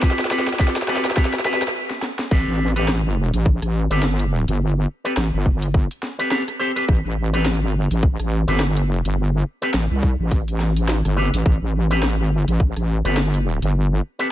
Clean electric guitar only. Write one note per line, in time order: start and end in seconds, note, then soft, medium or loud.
0.02 0.20 C4 medium
0.02 0.20 G4 medium
0.02 0.20 A4 medium
0.02 0.20 B4 medium
0.31 0.48 C4 medium
0.31 0.48 G4 medium
0.31 0.48 A4 medium
0.31 0.48 B4 medium
0.59 0.77 C4 medium
0.59 0.77 G4 medium
0.59 0.77 A4 medium
0.59 0.77 B4 medium
0.88 1.06 C4 medium
0.88 1.06 G4 medium
0.88 1.06 A4 medium
0.88 1.06 B4 loud
1.16 1.34 C4 medium
1.16 1.34 G4 medium
1.16 1.34 A4 medium
1.16 1.34 B4 medium
1.45 1.63 C4 medium
1.45 1.63 G4 medium
1.45 1.63 A4 medium
1.45 1.63 B4 loud
2.31 2.70 C4 loud
2.31 2.70 G4 medium
2.31 2.70 A4 medium
2.31 2.70 B4 loud
2.76 2.89 C4 medium
2.76 2.89 G4 medium
2.76 2.89 A4 medium
2.76 2.89 B4 medium
3.90 4.04 C4 medium
3.90 4.04 G4 medium
3.90 4.04 A4 medium
3.90 4.04 B4 medium
5.05 5.13 C4 medium
5.05 5.13 G4 medium
5.05 5.13 A4 medium
5.05 5.13 B4 medium
6.19 6.28 C4 medium
6.19 6.28 G4 medium
6.19 6.28 A4 medium
6.19 6.28 B4 medium
6.31 6.42 C4 medium
6.31 6.42 G4 medium
6.31 6.42 A4 medium
6.31 6.42 B4 medium
6.59 6.71 C4 medium
6.59 6.71 G4 medium
6.59 6.71 A4 medium
6.59 6.71 C5 loud
6.76 6.84 C4 medium
6.76 6.84 G4 medium
6.76 6.84 A4 medium
6.76 6.84 B4 loud
7.33 7.47 C4 medium
7.33 7.47 G4 medium
7.33 7.47 A4 medium
7.33 7.47 B4 medium
8.47 8.61 C4 medium
8.47 8.61 G4 medium
8.47 8.61 A4 medium
8.47 8.61 B4 medium
9.62 9.70 C4 medium
9.62 9.70 G4 medium
9.62 9.70 A4 medium
9.62 9.70 B4 loud
11.16 11.28 C4 medium
11.16 11.28 G4 medium
11.16 11.28 A4 medium
11.16 11.28 B4 medium
11.90 12.04 C4 medium
11.90 12.04 G4 medium
11.90 12.04 A4 medium
11.90 12.04 B4 loud
13.05 13.18 C4 medium
13.05 13.18 G4 medium
13.05 13.18 A4 medium
13.05 13.18 B4 medium
14.19 14.27 C4 medium
14.19 14.27 G4 medium
14.19 14.27 A4 medium
14.19 14.27 B4 medium